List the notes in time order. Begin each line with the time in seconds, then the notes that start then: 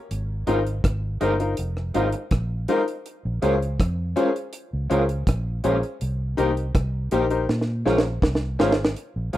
0.11 G#1, closed hi-hat
0.47 G#1 G#3 C4 D#4 F4 A#4 C5, closed hi-hat
0.67 closed hi-hat
0.84 G#1, kick, cross-stick, closed hi-hat
1.21 G1 G#3 C4 D#4 F4 A#4 C5, closed hi-hat
1.40 D#4 F4 A#4 C5, closed hi-hat
1.57 F1, closed hi-hat
1.77 cross-stick
1.94 G#1 G#3 C4 D#4 F4 A#4 C5, closed hi-hat
2.12 muted clean electric guitar stroke, closed hi-hat
2.31 A#1, kick, cross-stick, closed hi-hat
2.68 G#3 C4 D#4 F4 A#4 C5, closed hi-hat
2.88 closed hi-hat
3.06 closed hi-hat
3.25 A#1
3.42 C#2 G#3 C#4 F4 G#4 A#4 C5, closed hi-hat
3.62 closed hi-hat
3.80 F2, kick, cross-stick, closed hi-hat
4.16 G#3 C#4 F4 G#4 A#4 C5, closed hi-hat
4.36 closed hi-hat
4.53 closed hi-hat
4.73 C#2
4.90 C#2 G#3 C#4 F4 G#4 A#4 C5, closed hi-hat
5.09 closed hi-hat
5.27 A#1, kick, cross-stick, closed hi-hat
5.64 A#1 G#3 C#4 F4 G#4 A#4 C5, closed hi-hat
5.83 closed hi-hat
6.01 C2, closed hi-hat
6.37 C2 A#3 D#4 G4 A#4 C5, closed hi-hat
6.57 closed hi-hat
6.75 C2, kick, cross-stick, closed hi-hat
7.11 A#1 A#3 D#4 G4 A#4 C5, closed hi-hat
7.30 D#4 G4 A#4 C5, closed hi-hat
7.49 A#2, snare
7.61 snare
7.85 A#1 G#3 C#4 F4 G#4 A#4 C5, snare
7.98 snare
8.05 muted clean electric guitar stroke
8.22 C2, kick, snare
8.35 snare
8.59 G#1 G#3 C#4 F4 G#4 A#4 C5, snare
8.72 snare
8.85 snare
8.96 closed hi-hat
9.16 A#1
9.33 C#2 G#3 C#4 F4 G#4 C5, closed hi-hat